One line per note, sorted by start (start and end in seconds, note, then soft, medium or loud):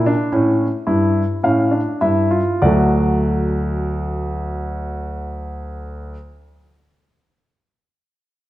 0.00 0.12 A#2 medium
0.00 1.38 E5 medium
0.06 0.32 D4 medium
0.32 0.66 A2 medium
0.32 0.66 C#4 medium
0.87 1.22 G2 medium
0.87 1.22 E4 medium
1.43 1.80 A2 medium
1.43 1.71 C#4 medium
1.43 1.80 F5 medium
1.71 2.00 D4 medium
2.01 2.39 G2 medium
2.01 2.31 E4 medium
2.01 2.39 E5 medium
2.31 2.61 F4 medium
2.62 6.13 D2 medium
2.62 6.16 F#3 medium
2.62 6.16 A3 medium
2.62 6.13 F#4 medium
2.62 6.13 D5 medium